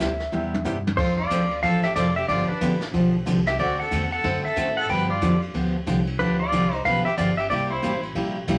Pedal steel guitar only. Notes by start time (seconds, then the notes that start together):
Already playing: E5
0.97 C5
1.17 D5
1.63 F5
1.84 E5
1.96 D5
2.16 E5
2.28 D5
2.48 B4
3.47 E5
3.60 D5
3.80 F#5
4.12 F#5
4.45 E5
4.77 F#5
4.90 G5
5.10 D5
6.19 B4
6.40 D5
6.85 F5
7.05 E5
7.18 D5
7.37 E5
7.50 D5
7.70 C5